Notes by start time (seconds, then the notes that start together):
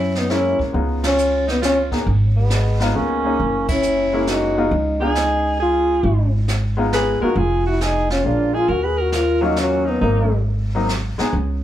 Already playing: F#2 C#4 E4
0.15 B3 D#4, snare
0.30 G#3 A#3 C#4 E4, snare
0.59 muted upright bass stroke, kick
0.73 C#2 G#3 B3 D#4 F4, brush sweep
1.04 C#4 F4, snare, ride
1.18 hi-hat pedal
1.47 B3 D#4, snare
1.62 C#4 F4, snare, hi-hat pedal
1.91 A#3 B3 D#4 G#4, kick, snare
2.06 G#1, brush sweep
2.36 G#3 B3
2.50 snare, hi-hat pedal
2.80 G#3 B3 D#4 F4, snare
2.95 C#2 A#3 C#4
3.24 G#3 A#3 C#4 D#4
3.39 F#1, brush sweep
3.68 C#4 E4, kick, ride
3.83 hi-hat pedal
4.13 G#3 A#3 C#4 E4
4.27 D#4 F#4, snare, hi-hat pedal
4.57 G#3 B3 D#4 F4
4.71 C#2, brush sweep
5.00 G#3 B3 D#4 F4 G#4
5.15 snare, hi-hat pedal
5.60 F4 G#4
6.03 G#1, brush sweep
6.48 snare, hi-hat pedal
6.77 G#3 B3 D#4 F4
6.93 G#4 B4, snare, hi-hat pedal
7.21 G#3 B3 D#4 F4 F#4 A#4, muted upright bass stroke
7.36 F1 F4 G#4, brush sweep
7.66 E4 F#4
7.81 D#4 G#4, snare, hi-hat pedal
8.10 C#4 F4, snare
8.24 A#1 G#3 A#3 D4 F4
8.54 F4 G#4
8.69 D#2 F#4 A#4, brush sweep
8.83 G#4 B4
8.97 F#4 A#4
9.12 A#4, snare, hi-hat pedal
9.16 F4
9.41 F#3 A#3 C#4 D#4 F4 F#4
9.56 C#4 F#4, snare, hi-hat pedal
9.85 D#4
9.89 B3
10.01 G#1 F#3 A#3 C4 D#4, brush sweep
10.75 F#3 A#3 C4 D#4
10.89 snare, hi-hat pedal
11.18 G#3 B3 D#4 G#4, muted upright bass stroke, snare
11.33 C#2, brush sweep